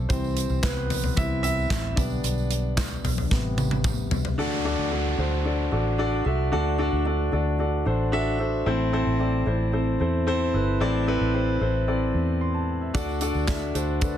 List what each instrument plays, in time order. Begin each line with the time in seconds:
Already playing: grand piano A3 A4
0.09 fingered electric bass C2, grand piano E3 G3 C4 C5, kick, hi-hat pedal, open hi-hat, tambourine
0.24 tambourine
0.37 hi-hat pedal, open hi-hat, tambourine
0.49 fingered electric bass C2, tambourine
0.63 fingered electric bass C2, grand piano B3 B4, kick, snare, clap, hi-hat pedal, open hi-hat, tambourine
0.90 floor tom, hi-hat pedal, open hi-hat, tambourine
1.04 floor tom
1.17 fingered electric bass C2, grand piano E3 G3 C4 E4 E5, kick, hi-hat pedal, open hi-hat, tambourine
1.43 grand piano E4 E5, hi-hat pedal, open hi-hat, tambourine
1.57 tambourine
1.70 fingered electric bass A1, kick, snare, clap, hi-hat pedal, open hi-hat, tambourine
1.96 fingered electric bass B1, grand piano D3 G3 B3 D4 D5, kick, hi-hat pedal, open hi-hat, tambourine
2.10 tambourine
2.24 fingered electric bass B1, hi-hat pedal, open hi-hat, tambourine
2.38 tambourine
2.50 hi-hat pedal, open hi-hat, tambourine
2.77 kick, snare, clap, hi-hat pedal, open hi-hat, tambourine
3.04 fingered electric bass B1, floor tom, hi-hat pedal, open hi-hat, tambourine
3.18 floor tom
3.30 fingered electric bass A1, grand piano C3 G3 B3, kick, snare, tambourine
3.58 high tom, tambourine
3.71 high tom
3.84 kick, mid tom, tambourine
4.11 fingered electric bass C2, floor tom, tambourine
4.25 floor tom
4.38 fingered electric bass D2, grand piano D3 D4 F#4 A4 D5, downlifter
4.64 grand piano D4 F#4 A4 D5
4.78 fingered electric bass D2
4.91 grand piano D4 F#4 A4 D5
5.18 fingered electric bass D2, grand piano D4 F#4 A4 C5
5.45 grand piano D4 F#4 A4 D5
5.72 fingered electric bass A1, grand piano D4 F#4 A4 D5
5.98 grand piano D4 F#4 A4 D5
6.25 fingered electric bass C2, grand piano D4 F#4 A4 E5
6.52 fingered electric bass D2, grand piano D3 D4 F#4 A4 D5
6.78 grand piano D4 F#4 A4 D5
6.93 fingered electric bass D2
7.06 grand piano D4 F#4 A4 D5
7.32 fingered electric bass D2, grand piano D4 F#4 A4 D5
7.59 grand piano D4 F#4 A4 D5
7.86 fingered electric bass A1, grand piano D4 F#4 A4 C5
8.12 grand piano D4 F#4 A4 E5
8.39 grand piano D4 F#4 A4 C5
8.66 fingered electric bass A1, grand piano A2 C4 E4 A4 C5
8.93 grand piano C4 E4 A4 C5
9.07 fingered electric bass A1
9.19 grand piano C4 E4 A4 D5
9.46 fingered electric bass A1, grand piano C4 E4 A4 C5
9.73 grand piano C4 E4 A4 C5
10.00 fingered electric bass E2, grand piano C4 E4 A4 C5
10.27 grand piano C4 E4 A4 C5
10.54 fingered electric bass G1, grand piano C4 E4 A4 B4
10.80 fingered electric bass A1, grand piano A2 C4 E4 A4 D5
11.07 grand piano C4 E4 A4 B4
11.21 fingered electric bass A1
11.34 grand piano C4 E4 A4 C5
11.61 fingered electric bass A1, grand piano C4 E4 A4 C5
11.87 grand piano C4 E4 A4 D5
12.14 fingered electric bass E2
12.41 grand piano C6
12.54 grand piano A5
12.81 grand piano E5
12.94 fingered electric bass D2, grand piano D3 D4 F#4 A4 D5, kick, closed hi-hat, tambourine
13.09 tambourine
13.21 grand piano D4 F#4 A4 D5, closed hi-hat, tambourine
13.34 fingered electric bass D2, tambourine
13.47 grand piano D4 F#4 A4 E5, kick, snare, clap, closed hi-hat, tambourine
13.74 fingered electric bass D2, grand piano D4 F#4 A4 C5, closed hi-hat, tambourine
14.01 grand piano D4 F#4 A4 B4, kick, closed hi-hat, tambourine